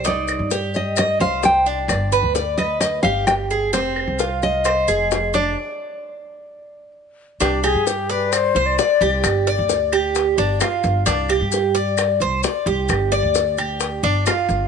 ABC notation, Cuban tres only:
X:1
M:4/4
L:1/8
Q:1/4=131
K:Fdor
V:1 name="Cuban tres"
E2 G2 e c2 D- | D =B d B2 G2 A | C2 F2 c A2 D | z8 |
[K:Gphr] D G2 d2 c d G- | G d2 G2 D F2 | D G2 d2 c d G- | G d2 G2 D F2 |]